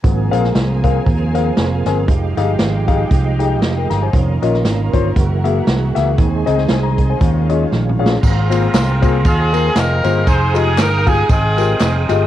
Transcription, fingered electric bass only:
X:1
M:4/4
L:1/8
Q:"Swing" 1/4=117
K:Fm
V:1 name="Fingered electric bass" clef=bass
A,,, B,,, C,,2 E,,2 F,,, G,,, | F,,, G,,, A,,,2 C,,2 F,,, G,,, | F,,, B,,, A,,, G,,, _G,,,2 C,, D,, | E,, D,, C,,2 E,,2 B,,,2 |
A,,,2 C,,2 E,,2 F,,, G,,, | F,,,2 G,,,2 A,,,2 F,,, G,,, |]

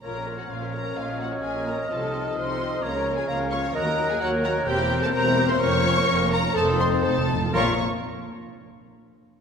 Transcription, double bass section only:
X:1
M:4/4
L:1/8
Q:1/4=128
K:Bbm
V:1 name="Double bass section" clef=bass
B,,,2 B,,,2 B,,,2 B,,,2 | C,,2 C,,2 D,,2 D,,2 | E,,2 E,,2 =E,,,2 E,,,2 | F,,,2 F,,,2 F,,,2 F,,,2 |
B,,, z6 z |]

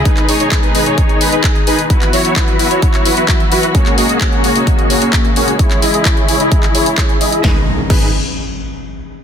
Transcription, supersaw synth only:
X:1
M:4/4
L:1/16
Q:1/4=130
K:G#m
V:1 name="Supersaw synth"
[DGB]2 [DGc] [DGc] [DGB]2 [DGB] [DGc] [DGc]2 [DGB] [DGB] [DGd] z [DGB] z | [EFB]2 [EFc] [EFc] [EFB]2 [EFB] [EFc] [EFc]2 [EFB] [EFB] [EFe] z [EFB] z | [A,CFGc]2 [A,CFGd] [A,CFGd] [A,CFGc]2 [A,CFGc] [A,CFGd] [A,CFGd]2 [A,CFGc] [A,CFGc] [A,CFGe] z [A,CFGc] z | [EGc]2 [EGd] [EGd] [EGc]2 [EGc] [EGd] [EGd]2 [EGc] z [EGc]2 [EGd]2 |
[DGB] z3 [DGB]2 z8 z2 |]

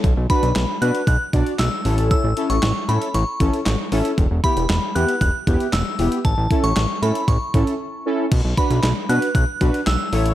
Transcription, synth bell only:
X:1
M:4/4
L:1/16
Q:1/4=116
K:Bm
V:1 name="Synth bell"
z2 b4 f'2 f'4 e'4 | e'3 c'3 b2 c'6 z2 | z2 b4 f'2 f'4 e'4 | a3 c'3 b2 c'6 z2 |
z2 b4 f'2 f'4 e'4 |]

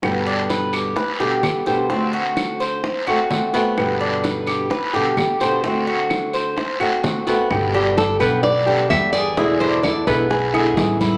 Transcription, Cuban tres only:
X:1
M:4/4
L:1/8
Q:1/4=128
K:G
V:1 name="Cuban tres"
z D B G B G2 c | C F2 c2 F2 B,- | B, D B G B G2 c | C F2 c2 F2 B, |
z D2 B,2 D2 _A | ^G, D2 B,2 ^G2 E |]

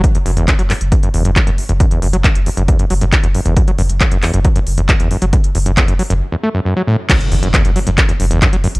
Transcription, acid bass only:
X:1
M:4/4
L:1/16
Q:1/4=136
K:F#m
V:1 name="Acid bass" clef=bass
z E,, F,, E,, F,, F, F,, z E,, F,, E,, F,, F, F,, z E,, | F,, E,, F,, F, F,, z E,, F,, E,, F,, F, F,, z E,, F,, E,, | F,, F, F,, z E,, F,, E,, F,, F, F,, z E,, F,, E,, F,, F, | F,, z E,, F,, E,, F,, F, F,, z E,, A, F,, F,, F, A,, z |
F,, z E,, F,, E,, F,, F, F,, z E,, F,, E,, z F, F,, z |]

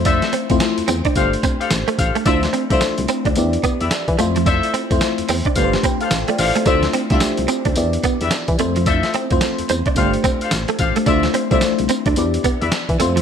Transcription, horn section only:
X:1
M:4/4
L:1/16
Q:"Swing 16ths" 1/4=109
K:Flyd
V:1 name="Horn section"
[FAce]2 z6 [GAcf] z2 [GAcf] z2 [GAcf] z | [Fcde] z2 [Fcde] z6 z [GBde] z4 | [FAce]2 z6 [GAcf] z2 [GAcf] z2 [GAcf] z | [Fcde] z2 [Fcde] z6 z [GBde] z4 |
[FAce]2 z6 [GAcf] z2 [GAcf] z2 [GAcf] z | [Fcde] z2 [Fcde] z6 z [GBde] z4 |]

